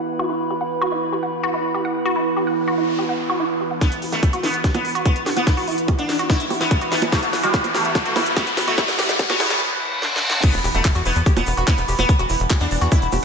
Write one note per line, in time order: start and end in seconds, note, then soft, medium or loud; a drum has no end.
0.00 3.80 E3 medium
0.00 3.80 B3 medium
0.00 9.61 E4 medium
0.00 9.61 B4 medium
0.00 9.61 B5 medium
0.19 0.26 F#4 loud
0.30 0.36 E4 medium
0.50 0.57 G4 medium
0.61 0.71 F#5 medium
0.81 0.88 F#4 loud
0.92 0.99 E4 medium
1.12 1.19 G4 medium
1.23 1.33 F#5 medium
1.43 1.50 F#4 loud
1.54 1.61 E4 medium
1.74 1.81 G4 medium
1.85 1.95 F#5 medium
2.06 2.12 F#4 loud
2.16 2.23 E4 medium
2.16 noise sweep medium
2.37 2.43 G4 medium
2.47 2.57 F#5 medium
2.68 2.74 F#4 loud
2.78 2.85 E4 medium
2.99 3.05 G4 medium
3.09 3.19 F#5 medium
3.30 3.36 F#4 loud
3.40 3.47 E4 medium
3.61 3.67 G4 medium
3.71 3.81 F#5 medium
3.81 10.42 E3 medium
3.81 3.95 B3 loud
3.81 10.42 B3 medium
3.81 3.88 E4 medium
3.81 kick loud
3.81 snare soft
3.81 closed hi-hat medium
3.81 riser medium
3.92 closed hi-hat medium
4.02 4.09 G4 medium
4.02 open hi-hat loud
4.12 4.26 A3 medium
4.12 4.22 F#5 medium
4.12 snare soft
4.12 closed hi-hat medium
4.23 kick loud
4.23 closed hi-hat medium
4.23 high bongo soft
4.33 4.40 F#4 loud
4.33 closed hi-hat medium
4.43 4.57 B3 medium
4.43 4.50 E4 medium
4.43 snare medium
4.43 open hi-hat loud
4.54 closed hi-hat medium
4.64 4.71 G4 medium
4.64 kick loud
4.64 snare medium
4.64 closed hi-hat medium
4.74 4.88 B3 medium
4.74 4.84 F#5 medium
4.74 closed hi-hat medium
4.74 high bongo medium
4.85 open hi-hat loud
4.95 5.02 F#4 loud
4.95 closed hi-hat medium
5.05 5.19 B3 medium
5.05 5.12 E4 medium
5.05 kick loud
5.05 closed hi-hat medium
5.16 closed hi-hat medium
5.26 5.33 G4 medium
5.26 snare medium
5.26 open hi-hat loud
5.36 5.51 B3 medium
5.36 5.46 F#5 medium
5.36 closed hi-hat medium
5.36 high bongo soft
5.47 kick loud
5.47 snare medium
5.47 closed hi-hat medium
5.57 5.64 F#4 loud
5.57 open hi-hat medium
5.68 5.74 E4 medium
5.68 open hi-hat loud
5.78 closed hi-hat medium
5.88 5.95 G4 medium
5.88 kick loud
5.88 closed hi-hat medium
5.88 high bongo medium
5.99 6.13 D4 medium
5.99 6.08 F#5 medium
5.99 closed hi-hat medium
6.09 snare medium
6.09 open hi-hat loud
6.19 6.26 F#4 loud
6.19 closed hi-hat medium
6.30 6.44 E4 medium
6.30 6.36 E4 medium
6.30 kick loud
6.30 snare medium
6.30 closed hi-hat medium
6.40 closed hi-hat medium
6.50 6.57 G4 medium
6.50 open hi-hat loud
6.50 high bongo soft
6.61 6.75 B3 medium
6.61 6.71 F#5 medium
6.61 snare medium
6.61 closed hi-hat medium
6.71 kick loud
6.71 closed hi-hat medium
6.81 6.88 F#4 loud
6.81 closed hi-hat medium
6.92 7.01 B3 medium
6.92 6.99 E4 medium
6.92 snare medium
6.92 open hi-hat loud
7.02 closed hi-hat medium
7.02 high bongo medium
7.12 7.26 A3 loud
7.12 7.19 G4 medium
7.12 kick loud
7.12 snare medium
7.12 closed hi-hat medium
7.23 7.33 F#5 medium
7.23 closed hi-hat medium
7.33 snare medium
7.33 open hi-hat loud
7.43 7.57 G3 loud
7.43 7.50 F#4 loud
7.43 closed hi-hat medium
7.54 7.61 E4 medium
7.54 kick loud
7.54 snare medium
7.54 closed hi-hat medium
7.64 closed hi-hat medium
7.64 high bongo soft
7.74 7.88 A3 medium
7.74 7.81 G4 medium
7.74 snare medium
7.74 open hi-hat loud
7.85 7.95 F#5 medium
7.85 closed hi-hat medium
7.95 kick loud
7.95 snare medium
7.95 closed hi-hat medium
8.06 8.19 A3 medium
8.06 8.12 F#4 loud
8.06 closed hi-hat medium
8.16 8.23 E4 medium
8.16 snare medium
8.16 open hi-hat loud
8.16 high bongo medium
8.26 closed hi-hat medium
8.37 8.51 B3 medium
8.37 8.43 G4 medium
8.37 kick loud
8.37 snare medium
8.37 closed hi-hat medium
8.47 8.57 F#5 medium
8.47 closed hi-hat medium
8.57 snare medium
8.57 open hi-hat loud
8.68 8.82 A3 medium
8.68 8.74 F#4 loud
8.68 closed hi-hat medium
8.78 8.85 E4 medium
8.78 kick loud
8.78 snare medium
8.78 closed hi-hat medium
8.78 high bongo soft
8.88 snare medium
8.88 open hi-hat medium
8.99 9.05 G4 medium
8.99 snare loud
8.99 open hi-hat loud
9.09 9.19 F#5 medium
9.09 snare medium
9.09 closed hi-hat medium
9.19 kick loud
9.19 snare loud
9.19 closed hi-hat medium
9.30 9.44 B3 medium
9.30 9.36 F#4 loud
9.30 snare medium
9.30 closed hi-hat medium
9.30 high bongo medium
9.40 9.47 E4 medium
9.40 snare loud
9.40 open hi-hat loud
9.50 snare medium
9.50 closed hi-hat medium
9.61 reverse cymbal medium
10.02 snare medium
10.16 snare medium
10.30 snare loud
10.43 13.25 E3 medium
10.43 13.25 B3 medium
10.43 10.57 B3 loud
10.43 10.50 E4 medium
10.43 kick loud
10.43 closed hi-hat medium
10.43 crash loud
10.43 impact medium
10.43 shaker medium
10.54 10.60 E1 medium
10.54 closed hi-hat medium
10.64 10.71 E1 loud
10.64 10.71 G4 medium
10.64 open hi-hat loud
10.64 shaker loud
10.75 10.81 E1 loud
10.75 10.88 A3 loud
10.75 10.84 F#5 medium
10.75 closed hi-hat medium
10.75 shaker soft
10.85 kick loud
10.85 clap loud
10.85 closed hi-hat medium
10.85 high bongo soft
10.85 shaker medium
10.94 11.02 E2 medium
10.94 11.02 F#4 loud
10.94 closed hi-hat medium
10.94 shaker soft
11.05 11.12 E1 loud
11.05 11.19 B3 medium
11.05 11.12 E4 medium
11.05 open hi-hat loud
11.05 shaker loud
11.16 11.22 E2 loud
11.16 closed hi-hat medium
11.16 shaker soft
11.26 11.33 G4 medium
11.26 kick loud
11.26 closed hi-hat medium
11.26 shaker medium
11.37 11.43 E1 medium
11.37 11.51 B3 medium
11.37 11.46 F#5 medium
11.37 closed hi-hat medium
11.37 high bongo medium
11.37 shaker soft
11.46 11.53 E1 loud
11.46 open hi-hat loud
11.46 shaker medium
11.57 11.64 E1 medium
11.57 11.64 F#4 loud
11.57 closed hi-hat medium
11.57 shaker soft
11.68 11.82 B3 loud
11.68 11.74 E4 medium
11.68 kick loud
11.68 clap loud
11.68 closed hi-hat medium
11.68 shaker soft
11.78 11.84 E1 medium
11.78 closed hi-hat medium
11.78 shaker soft
11.88 11.95 E1 loud
11.88 11.95 G4 medium
11.88 open hi-hat loud
11.88 shaker medium
11.99 12.05 E1 medium
11.99 12.13 B3 loud
11.99 12.08 F#5 medium
11.99 closed hi-hat medium
11.99 high bongo soft
11.99 shaker soft
12.09 kick loud
12.09 closed hi-hat medium
12.09 shaker medium
12.19 12.26 E1 medium
12.19 12.26 F#4 loud
12.19 closed hi-hat medium
12.29 12.36 E1 loud
12.29 12.36 E4 medium
12.29 open hi-hat loud
12.29 shaker medium
12.40 12.47 E1 loud
12.40 closed hi-hat medium
12.40 shaker soft
12.50 12.57 G4 medium
12.50 kick loud
12.50 clap loud
12.50 closed hi-hat medium
12.50 high bongo medium
12.50 shaker medium
12.61 12.67 E2 medium
12.61 12.75 D4 loud
12.61 12.71 F#5 medium
12.61 closed hi-hat medium
12.61 shaker soft
12.71 12.78 E1 loud
12.71 open hi-hat loud
12.71 shaker medium
12.81 12.88 E2 medium
12.81 12.88 F#4 loud
12.81 closed hi-hat medium
12.81 shaker soft
12.92 13.06 E4 medium
12.92 12.99 E4 medium
12.92 kick loud
12.92 closed hi-hat medium
12.92 shaker medium
13.02 13.09 E1 medium
13.02 closed hi-hat medium
13.02 shaker soft
13.12 13.19 E1 loud
13.12 13.19 G4 medium
13.12 open hi-hat loud
13.12 high bongo soft
13.12 shaker loud